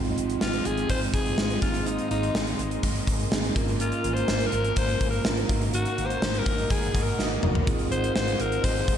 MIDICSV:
0, 0, Header, 1, 7, 480
1, 0, Start_track
1, 0, Tempo, 483871
1, 1851, Time_signature, 4, 2, 24, 8
1, 8906, End_track
2, 0, Start_track
2, 0, Title_t, "Ambient pad"
2, 0, Program_c, 0, 92
2, 0, Note_on_c, 0, 68, 76
2, 0, Note_on_c, 0, 75, 71
2, 0, Note_on_c, 0, 77, 70
2, 0, Note_on_c, 0, 84, 86
2, 1595, Note_off_c, 0, 68, 0
2, 1595, Note_off_c, 0, 77, 0
2, 1612, Note_on_c, 0, 70, 80
2, 1612, Note_on_c, 0, 80, 75
2, 3495, Note_off_c, 0, 75, 0
2, 3496, Note_off_c, 0, 84, 0
2, 3512, Note_off_c, 0, 80, 0
2, 3533, Note_on_c, 0, 61, 73
2, 3533, Note_on_c, 0, 82, 89
2, 3534, Note_on_c, 0, 77, 74
2, 5433, Note_off_c, 0, 61, 0
2, 5433, Note_off_c, 0, 77, 0
2, 5433, Note_off_c, 0, 82, 0
2, 5452, Note_on_c, 0, 75, 72
2, 5452, Note_on_c, 0, 78, 75
2, 5452, Note_on_c, 0, 87, 91
2, 7572, Note_off_c, 0, 70, 0
2, 7590, Note_off_c, 0, 78, 0
2, 7590, Note_off_c, 0, 87, 0
2, 7610, Note_on_c, 0, 84, 86
2, 7611, Note_on_c, 0, 68, 80
2, 7612, Note_on_c, 0, 77, 73
2, 8906, Note_off_c, 0, 68, 0
2, 8906, Note_off_c, 0, 75, 0
2, 8906, Note_off_c, 0, 77, 0
2, 8906, Note_off_c, 0, 84, 0
2, 8906, End_track
3, 0, Start_track
3, 0, Title_t, "Alto saxophone"
3, 0, Program_c, 1, 65
3, 414, Note_on_c, 1, 65, 90
3, 655, Note_on_c, 1, 68, 97
3, 670, Note_off_c, 1, 65, 0
3, 888, Note_off_c, 1, 68, 0
3, 894, Note_on_c, 1, 72, 98
3, 1001, Note_off_c, 1, 72, 0
3, 1131, Note_on_c, 1, 68, 98
3, 1578, Note_off_c, 1, 68, 0
3, 1611, Note_on_c, 1, 65, 86
3, 1848, Note_on_c, 1, 63, 81
3, 1863, Note_off_c, 1, 65, 0
3, 2084, Note_off_c, 1, 63, 0
3, 2090, Note_on_c, 1, 63, 79
3, 2537, Note_off_c, 1, 63, 0
3, 3778, Note_on_c, 1, 65, 92
3, 4107, Note_on_c, 1, 72, 100
3, 4121, Note_off_c, 1, 65, 0
3, 4424, Note_on_c, 1, 70, 90
3, 4439, Note_off_c, 1, 72, 0
3, 4738, Note_off_c, 1, 70, 0
3, 4742, Note_on_c, 1, 72, 95
3, 5035, Note_off_c, 1, 72, 0
3, 5062, Note_on_c, 1, 70, 79
3, 5280, Note_off_c, 1, 70, 0
3, 5696, Note_on_c, 1, 66, 90
3, 6012, Note_on_c, 1, 72, 100
3, 6026, Note_off_c, 1, 66, 0
3, 6330, Note_on_c, 1, 70, 99
3, 6345, Note_off_c, 1, 72, 0
3, 6651, Note_on_c, 1, 68, 88
3, 6666, Note_off_c, 1, 70, 0
3, 6971, Note_on_c, 1, 70, 74
3, 6986, Note_off_c, 1, 68, 0
3, 7211, Note_off_c, 1, 70, 0
3, 7852, Note_on_c, 1, 72, 94
3, 8075, Note_off_c, 1, 72, 0
3, 8094, Note_on_c, 1, 72, 104
3, 8334, Note_on_c, 1, 70, 98
3, 8349, Note_off_c, 1, 72, 0
3, 8572, Note_on_c, 1, 72, 96
3, 8587, Note_off_c, 1, 70, 0
3, 8887, Note_off_c, 1, 72, 0
3, 8906, End_track
4, 0, Start_track
4, 0, Title_t, "Tine electric piano"
4, 0, Program_c, 2, 4
4, 0, Note_on_c, 2, 44, 69
4, 0, Note_on_c, 2, 56, 76
4, 0, Note_on_c, 2, 60, 74
4, 0, Note_on_c, 2, 63, 75
4, 0, Note_on_c, 2, 65, 87
4, 119, Control_c, 2, 64, 127
4, 610, Note_off_c, 2, 44, 0
4, 766, Note_off_c, 2, 56, 0
4, 767, Note_off_c, 2, 60, 0
4, 770, Note_off_c, 2, 63, 0
4, 772, Note_off_c, 2, 65, 0
4, 1360, Note_on_c, 2, 56, 67
4, 1364, Note_on_c, 2, 60, 62
4, 1369, Note_on_c, 2, 63, 63
4, 1372, Note_on_c, 2, 65, 79
4, 1598, Note_off_c, 2, 60, 0
4, 1601, Note_off_c, 2, 63, 0
4, 1606, Note_off_c, 2, 56, 0
4, 1606, Note_on_c, 2, 58, 64
4, 1610, Note_on_c, 2, 60, 61
4, 1612, Note_off_c, 2, 65, 0
4, 1613, Note_on_c, 2, 44, 57
4, 1613, Note_on_c, 2, 63, 61
4, 1616, Note_on_c, 2, 68, 75
4, 1623, Control_c, 2, 64, 0
4, 1791, Control_c, 2, 64, 127
4, 2292, Note_off_c, 2, 44, 0
4, 2448, Note_off_c, 2, 58, 0
4, 2450, Note_off_c, 2, 60, 0
4, 2452, Note_off_c, 2, 63, 0
4, 2453, Note_off_c, 2, 68, 0
4, 3286, Note_on_c, 2, 58, 82
4, 3290, Note_on_c, 2, 60, 78
4, 3293, Note_on_c, 2, 63, 77
4, 3299, Note_on_c, 2, 68, 92
4, 3512, Note_off_c, 2, 58, 0
4, 3524, Note_on_c, 2, 58, 79
4, 3528, Note_on_c, 2, 61, 75
4, 3530, Note_off_c, 2, 60, 0
4, 3530, Note_on_c, 2, 44, 64
4, 3532, Note_off_c, 2, 63, 0
4, 3534, Note_on_c, 2, 65, 76
4, 3535, Note_off_c, 2, 68, 0
4, 3537, Note_on_c, 2, 70, 91
4, 3544, Control_c, 2, 64, 0
4, 3731, Control_c, 2, 64, 127
4, 4211, Note_off_c, 2, 44, 0
4, 4367, Note_off_c, 2, 58, 0
4, 4369, Note_off_c, 2, 61, 0
4, 4372, Note_off_c, 2, 65, 0
4, 4374, Note_off_c, 2, 70, 0
4, 5205, Note_on_c, 2, 58, 69
4, 5210, Note_on_c, 2, 61, 64
4, 5213, Note_on_c, 2, 65, 67
4, 5217, Note_on_c, 2, 70, 79
4, 5432, Note_off_c, 2, 58, 0
4, 5444, Note_on_c, 2, 58, 84
4, 5446, Note_off_c, 2, 70, 0
4, 5448, Note_on_c, 2, 63, 74
4, 5451, Note_off_c, 2, 61, 0
4, 5452, Note_off_c, 2, 65, 0
4, 5452, Note_on_c, 2, 44, 69
4, 5454, Note_on_c, 2, 66, 77
4, 5458, Note_on_c, 2, 70, 91
4, 5463, Control_c, 2, 64, 0
4, 5634, Control_c, 2, 64, 127
4, 6132, Note_off_c, 2, 44, 0
4, 6287, Note_off_c, 2, 58, 0
4, 6289, Note_off_c, 2, 63, 0
4, 6292, Note_off_c, 2, 66, 0
4, 6294, Note_off_c, 2, 70, 0
4, 7125, Note_on_c, 2, 58, 69
4, 7130, Note_on_c, 2, 63, 67
4, 7133, Note_on_c, 2, 66, 60
4, 7138, Note_on_c, 2, 70, 80
4, 7548, Note_off_c, 2, 58, 0
4, 7550, Note_off_c, 2, 63, 0
4, 7552, Note_off_c, 2, 66, 0
4, 7554, Note_off_c, 2, 70, 0
4, 7605, Note_on_c, 2, 60, 84
4, 7609, Note_on_c, 2, 63, 81
4, 7611, Note_on_c, 2, 44, 71
4, 7613, Note_on_c, 2, 65, 80
4, 7618, Note_on_c, 2, 68, 92
4, 7624, Control_c, 2, 64, 0
4, 7772, Control_c, 2, 64, 127
4, 8292, Note_off_c, 2, 44, 0
4, 8448, Note_off_c, 2, 60, 0
4, 8449, Note_off_c, 2, 63, 0
4, 8452, Note_off_c, 2, 65, 0
4, 8454, Note_off_c, 2, 68, 0
4, 8906, End_track
5, 0, Start_track
5, 0, Title_t, "Overdriven electric guitar"
5, 0, Program_c, 3, 29
5, 0, Note_on_c, 3, 41, 76
5, 0, Note_on_c, 3, 48, 90
5, 0, Note_on_c, 3, 53, 97
5, 631, Note_off_c, 3, 53, 0
5, 643, Note_on_c, 3, 53, 47
5, 648, Note_off_c, 3, 41, 0
5, 653, Note_off_c, 3, 48, 0
5, 667, Note_on_c, 3, 48, 37
5, 884, Note_off_c, 3, 48, 0
5, 886, Note_on_c, 3, 41, 66
5, 887, Note_off_c, 3, 53, 0
5, 896, Note_on_c, 3, 48, 74
5, 904, Note_on_c, 3, 53, 82
5, 1353, Note_off_c, 3, 41, 0
5, 1365, Note_off_c, 3, 48, 0
5, 1365, Note_on_c, 3, 41, 52
5, 1377, Note_on_c, 3, 48, 55
5, 1378, Note_off_c, 3, 53, 0
5, 1388, Note_on_c, 3, 53, 59
5, 1595, Note_off_c, 3, 53, 0
5, 1599, Note_on_c, 3, 56, 61
5, 1608, Note_off_c, 3, 41, 0
5, 1614, Note_off_c, 3, 48, 0
5, 1619, Note_on_c, 3, 51, 56
5, 1637, Note_on_c, 3, 44, 50
5, 2555, Note_off_c, 3, 56, 0
5, 2567, Note_on_c, 3, 56, 44
5, 2575, Note_off_c, 3, 51, 0
5, 2584, Note_off_c, 3, 44, 0
5, 2590, Note_on_c, 3, 51, 38
5, 2803, Note_off_c, 3, 51, 0
5, 2807, Note_on_c, 3, 44, 84
5, 2809, Note_off_c, 3, 56, 0
5, 2815, Note_on_c, 3, 51, 87
5, 2822, Note_on_c, 3, 56, 90
5, 3516, Note_off_c, 3, 56, 0
5, 3520, Note_on_c, 3, 58, 72
5, 3529, Note_off_c, 3, 44, 0
5, 3533, Note_off_c, 3, 51, 0
5, 3541, Note_on_c, 3, 53, 64
5, 3557, Note_on_c, 3, 46, 62
5, 4482, Note_off_c, 3, 58, 0
5, 4486, Note_on_c, 3, 58, 44
5, 4496, Note_off_c, 3, 53, 0
5, 4504, Note_off_c, 3, 46, 0
5, 4509, Note_on_c, 3, 53, 42
5, 4723, Note_off_c, 3, 53, 0
5, 4726, Note_on_c, 3, 46, 79
5, 4728, Note_off_c, 3, 58, 0
5, 4735, Note_on_c, 3, 53, 72
5, 4743, Note_on_c, 3, 58, 88
5, 5193, Note_off_c, 3, 46, 0
5, 5205, Note_on_c, 3, 46, 55
5, 5207, Note_off_c, 3, 53, 0
5, 5219, Note_on_c, 3, 53, 51
5, 5224, Note_off_c, 3, 58, 0
5, 5228, Note_on_c, 3, 58, 56
5, 5438, Note_on_c, 3, 63, 70
5, 5447, Note_off_c, 3, 58, 0
5, 5448, Note_off_c, 3, 46, 0
5, 5455, Note_off_c, 3, 53, 0
5, 5459, Note_on_c, 3, 58, 64
5, 5475, Note_on_c, 3, 51, 56
5, 6399, Note_off_c, 3, 63, 0
5, 6403, Note_on_c, 3, 63, 50
5, 6415, Note_off_c, 3, 58, 0
5, 6427, Note_on_c, 3, 58, 38
5, 6640, Note_off_c, 3, 51, 0
5, 6643, Note_off_c, 3, 58, 0
5, 6644, Note_on_c, 3, 51, 71
5, 6647, Note_off_c, 3, 63, 0
5, 6655, Note_on_c, 3, 58, 80
5, 6662, Note_on_c, 3, 63, 86
5, 7118, Note_off_c, 3, 51, 0
5, 7122, Note_on_c, 3, 51, 55
5, 7124, Note_off_c, 3, 58, 0
5, 7136, Note_on_c, 3, 58, 59
5, 7142, Note_off_c, 3, 63, 0
5, 7146, Note_on_c, 3, 63, 56
5, 7595, Note_off_c, 3, 51, 0
5, 7599, Note_on_c, 3, 53, 83
5, 7614, Note_off_c, 3, 58, 0
5, 7618, Note_on_c, 3, 60, 95
5, 7629, Note_off_c, 3, 63, 0
5, 7636, Note_on_c, 3, 65, 94
5, 8553, Note_off_c, 3, 53, 0
5, 8565, Note_on_c, 3, 53, 76
5, 8570, Note_off_c, 3, 60, 0
5, 8570, Note_off_c, 3, 65, 0
5, 8574, Note_on_c, 3, 60, 79
5, 8582, Note_on_c, 3, 65, 91
5, 8906, Note_off_c, 3, 53, 0
5, 8906, Note_off_c, 3, 60, 0
5, 8906, Note_off_c, 3, 65, 0
5, 8906, End_track
6, 0, Start_track
6, 0, Title_t, "Fretless electric bass"
6, 0, Program_c, 4, 35
6, 0, Note_on_c, 4, 32, 94
6, 103, Note_off_c, 4, 32, 0
6, 169, Note_on_c, 4, 32, 79
6, 343, Note_off_c, 4, 32, 0
6, 408, Note_on_c, 4, 32, 90
6, 582, Note_off_c, 4, 32, 0
6, 649, Note_on_c, 4, 32, 89
6, 823, Note_off_c, 4, 32, 0
6, 888, Note_on_c, 4, 32, 105
6, 1062, Note_off_c, 4, 32, 0
6, 1128, Note_on_c, 4, 32, 89
6, 1302, Note_off_c, 4, 32, 0
6, 1369, Note_on_c, 4, 32, 87
6, 1543, Note_off_c, 4, 32, 0
6, 1609, Note_on_c, 4, 32, 92
6, 1955, Note_off_c, 4, 32, 0
6, 2091, Note_on_c, 4, 32, 82
6, 2264, Note_off_c, 4, 32, 0
6, 2329, Note_on_c, 4, 32, 101
6, 2502, Note_off_c, 4, 32, 0
6, 2567, Note_on_c, 4, 32, 88
6, 2742, Note_off_c, 4, 32, 0
6, 2809, Note_on_c, 4, 32, 100
6, 2983, Note_off_c, 4, 32, 0
6, 3050, Note_on_c, 4, 32, 89
6, 3223, Note_off_c, 4, 32, 0
6, 3289, Note_on_c, 4, 32, 89
6, 3462, Note_off_c, 4, 32, 0
6, 3530, Note_on_c, 4, 32, 94
6, 3876, Note_off_c, 4, 32, 0
6, 4010, Note_on_c, 4, 32, 90
6, 4183, Note_off_c, 4, 32, 0
6, 4249, Note_on_c, 4, 32, 99
6, 4422, Note_off_c, 4, 32, 0
6, 4488, Note_on_c, 4, 32, 94
6, 4662, Note_off_c, 4, 32, 0
6, 4729, Note_on_c, 4, 32, 98
6, 4903, Note_off_c, 4, 32, 0
6, 4967, Note_on_c, 4, 32, 96
6, 5142, Note_off_c, 4, 32, 0
6, 5210, Note_on_c, 4, 32, 93
6, 5383, Note_off_c, 4, 32, 0
6, 5450, Note_on_c, 4, 32, 89
6, 5796, Note_off_c, 4, 32, 0
6, 5933, Note_on_c, 4, 32, 86
6, 6105, Note_off_c, 4, 32, 0
6, 6171, Note_on_c, 4, 32, 110
6, 6344, Note_off_c, 4, 32, 0
6, 6411, Note_on_c, 4, 32, 90
6, 6584, Note_off_c, 4, 32, 0
6, 6652, Note_on_c, 4, 32, 92
6, 6824, Note_off_c, 4, 32, 0
6, 6890, Note_on_c, 4, 32, 87
6, 7063, Note_off_c, 4, 32, 0
6, 7131, Note_on_c, 4, 32, 88
6, 7304, Note_off_c, 4, 32, 0
6, 7372, Note_on_c, 4, 30, 85
6, 7544, Note_off_c, 4, 30, 0
6, 7612, Note_on_c, 4, 32, 95
6, 7784, Note_off_c, 4, 32, 0
6, 7852, Note_on_c, 4, 32, 80
6, 8024, Note_off_c, 4, 32, 0
6, 8093, Note_on_c, 4, 32, 94
6, 8265, Note_off_c, 4, 32, 0
6, 8333, Note_on_c, 4, 32, 91
6, 8505, Note_off_c, 4, 32, 0
6, 8571, Note_on_c, 4, 32, 109
6, 8744, Note_off_c, 4, 32, 0
6, 8809, Note_on_c, 4, 32, 98
6, 8906, Note_off_c, 4, 32, 0
6, 8906, End_track
7, 0, Start_track
7, 0, Title_t, "Drums"
7, 49, Note_on_c, 9, 42, 47
7, 148, Note_off_c, 9, 42, 0
7, 175, Note_on_c, 9, 42, 68
7, 274, Note_off_c, 9, 42, 0
7, 294, Note_on_c, 9, 42, 57
7, 393, Note_off_c, 9, 42, 0
7, 408, Note_on_c, 9, 38, 106
7, 507, Note_off_c, 9, 38, 0
7, 529, Note_on_c, 9, 42, 51
7, 628, Note_off_c, 9, 42, 0
7, 647, Note_on_c, 9, 42, 79
7, 746, Note_off_c, 9, 42, 0
7, 769, Note_on_c, 9, 42, 50
7, 868, Note_off_c, 9, 42, 0
7, 887, Note_on_c, 9, 42, 81
7, 889, Note_on_c, 9, 36, 88
7, 986, Note_off_c, 9, 42, 0
7, 988, Note_off_c, 9, 36, 0
7, 1008, Note_on_c, 9, 42, 48
7, 1107, Note_off_c, 9, 42, 0
7, 1127, Note_on_c, 9, 36, 89
7, 1128, Note_on_c, 9, 42, 65
7, 1226, Note_off_c, 9, 36, 0
7, 1228, Note_off_c, 9, 42, 0
7, 1248, Note_on_c, 9, 42, 45
7, 1347, Note_off_c, 9, 42, 0
7, 1367, Note_on_c, 9, 38, 109
7, 1467, Note_off_c, 9, 38, 0
7, 1489, Note_on_c, 9, 42, 50
7, 1588, Note_off_c, 9, 42, 0
7, 1608, Note_on_c, 9, 42, 75
7, 1609, Note_on_c, 9, 36, 97
7, 1707, Note_off_c, 9, 42, 0
7, 1708, Note_off_c, 9, 36, 0
7, 1728, Note_on_c, 9, 42, 51
7, 1827, Note_off_c, 9, 42, 0
7, 1848, Note_on_c, 9, 42, 79
7, 1948, Note_off_c, 9, 42, 0
7, 1969, Note_on_c, 9, 42, 45
7, 2068, Note_off_c, 9, 42, 0
7, 2093, Note_on_c, 9, 42, 65
7, 2192, Note_off_c, 9, 42, 0
7, 2214, Note_on_c, 9, 42, 56
7, 2313, Note_off_c, 9, 42, 0
7, 2330, Note_on_c, 9, 38, 109
7, 2430, Note_off_c, 9, 38, 0
7, 2450, Note_on_c, 9, 42, 50
7, 2549, Note_off_c, 9, 42, 0
7, 2571, Note_on_c, 9, 42, 72
7, 2671, Note_off_c, 9, 42, 0
7, 2691, Note_on_c, 9, 42, 50
7, 2790, Note_off_c, 9, 42, 0
7, 2809, Note_on_c, 9, 42, 81
7, 2811, Note_on_c, 9, 36, 86
7, 2908, Note_off_c, 9, 42, 0
7, 2910, Note_off_c, 9, 36, 0
7, 2932, Note_on_c, 9, 42, 44
7, 3031, Note_off_c, 9, 42, 0
7, 3050, Note_on_c, 9, 36, 91
7, 3054, Note_on_c, 9, 42, 67
7, 3149, Note_off_c, 9, 36, 0
7, 3153, Note_off_c, 9, 42, 0
7, 3170, Note_on_c, 9, 42, 47
7, 3270, Note_off_c, 9, 42, 0
7, 3291, Note_on_c, 9, 38, 112
7, 3390, Note_off_c, 9, 38, 0
7, 3411, Note_on_c, 9, 42, 51
7, 3511, Note_off_c, 9, 42, 0
7, 3531, Note_on_c, 9, 36, 103
7, 3532, Note_on_c, 9, 42, 79
7, 3630, Note_off_c, 9, 36, 0
7, 3631, Note_off_c, 9, 42, 0
7, 3653, Note_on_c, 9, 42, 50
7, 3752, Note_off_c, 9, 42, 0
7, 3769, Note_on_c, 9, 42, 83
7, 3868, Note_off_c, 9, 42, 0
7, 3888, Note_on_c, 9, 42, 47
7, 3987, Note_off_c, 9, 42, 0
7, 4011, Note_on_c, 9, 42, 66
7, 4110, Note_off_c, 9, 42, 0
7, 4133, Note_on_c, 9, 42, 58
7, 4232, Note_off_c, 9, 42, 0
7, 4247, Note_on_c, 9, 38, 109
7, 4346, Note_off_c, 9, 38, 0
7, 4367, Note_on_c, 9, 42, 52
7, 4466, Note_off_c, 9, 42, 0
7, 4486, Note_on_c, 9, 42, 77
7, 4585, Note_off_c, 9, 42, 0
7, 4607, Note_on_c, 9, 42, 53
7, 4707, Note_off_c, 9, 42, 0
7, 4724, Note_on_c, 9, 42, 84
7, 4729, Note_on_c, 9, 36, 89
7, 4824, Note_off_c, 9, 42, 0
7, 4828, Note_off_c, 9, 36, 0
7, 4846, Note_on_c, 9, 42, 44
7, 4945, Note_off_c, 9, 42, 0
7, 4968, Note_on_c, 9, 36, 89
7, 4968, Note_on_c, 9, 42, 62
7, 5067, Note_off_c, 9, 36, 0
7, 5067, Note_off_c, 9, 42, 0
7, 5087, Note_on_c, 9, 42, 45
7, 5186, Note_off_c, 9, 42, 0
7, 5206, Note_on_c, 9, 38, 110
7, 5305, Note_off_c, 9, 38, 0
7, 5329, Note_on_c, 9, 42, 51
7, 5428, Note_off_c, 9, 42, 0
7, 5449, Note_on_c, 9, 42, 76
7, 5450, Note_on_c, 9, 36, 101
7, 5548, Note_off_c, 9, 42, 0
7, 5549, Note_off_c, 9, 36, 0
7, 5571, Note_on_c, 9, 42, 54
7, 5670, Note_off_c, 9, 42, 0
7, 5689, Note_on_c, 9, 42, 78
7, 5788, Note_off_c, 9, 42, 0
7, 5808, Note_on_c, 9, 42, 50
7, 5907, Note_off_c, 9, 42, 0
7, 5934, Note_on_c, 9, 42, 67
7, 6033, Note_off_c, 9, 42, 0
7, 6055, Note_on_c, 9, 42, 55
7, 6154, Note_off_c, 9, 42, 0
7, 6173, Note_on_c, 9, 38, 104
7, 6272, Note_off_c, 9, 38, 0
7, 6291, Note_on_c, 9, 42, 51
7, 6390, Note_off_c, 9, 42, 0
7, 6407, Note_on_c, 9, 42, 77
7, 6411, Note_on_c, 9, 36, 95
7, 6507, Note_off_c, 9, 42, 0
7, 6510, Note_off_c, 9, 36, 0
7, 6531, Note_on_c, 9, 42, 52
7, 6630, Note_off_c, 9, 42, 0
7, 6649, Note_on_c, 9, 42, 81
7, 6651, Note_on_c, 9, 36, 88
7, 6748, Note_off_c, 9, 42, 0
7, 6750, Note_off_c, 9, 36, 0
7, 6772, Note_on_c, 9, 42, 47
7, 6871, Note_off_c, 9, 42, 0
7, 6890, Note_on_c, 9, 36, 88
7, 6895, Note_on_c, 9, 42, 64
7, 6989, Note_off_c, 9, 36, 0
7, 6994, Note_off_c, 9, 42, 0
7, 7012, Note_on_c, 9, 42, 46
7, 7111, Note_off_c, 9, 42, 0
7, 7132, Note_on_c, 9, 38, 58
7, 7231, Note_off_c, 9, 38, 0
7, 7370, Note_on_c, 9, 45, 84
7, 7469, Note_off_c, 9, 45, 0
7, 7492, Note_on_c, 9, 43, 90
7, 7591, Note_off_c, 9, 43, 0
7, 7610, Note_on_c, 9, 42, 81
7, 7612, Note_on_c, 9, 36, 115
7, 7710, Note_off_c, 9, 42, 0
7, 7711, Note_off_c, 9, 36, 0
7, 7728, Note_on_c, 9, 42, 49
7, 7828, Note_off_c, 9, 42, 0
7, 7854, Note_on_c, 9, 42, 66
7, 7953, Note_off_c, 9, 42, 0
7, 7974, Note_on_c, 9, 42, 56
7, 8073, Note_off_c, 9, 42, 0
7, 8091, Note_on_c, 9, 38, 112
7, 8190, Note_off_c, 9, 38, 0
7, 8208, Note_on_c, 9, 42, 53
7, 8307, Note_off_c, 9, 42, 0
7, 8329, Note_on_c, 9, 42, 77
7, 8428, Note_off_c, 9, 42, 0
7, 8452, Note_on_c, 9, 42, 55
7, 8551, Note_off_c, 9, 42, 0
7, 8569, Note_on_c, 9, 42, 81
7, 8570, Note_on_c, 9, 36, 88
7, 8668, Note_off_c, 9, 42, 0
7, 8670, Note_off_c, 9, 36, 0
7, 8691, Note_on_c, 9, 42, 45
7, 8791, Note_off_c, 9, 42, 0
7, 8809, Note_on_c, 9, 36, 90
7, 8814, Note_on_c, 9, 42, 63
7, 8906, Note_off_c, 9, 36, 0
7, 8906, Note_off_c, 9, 42, 0
7, 8906, End_track
0, 0, End_of_file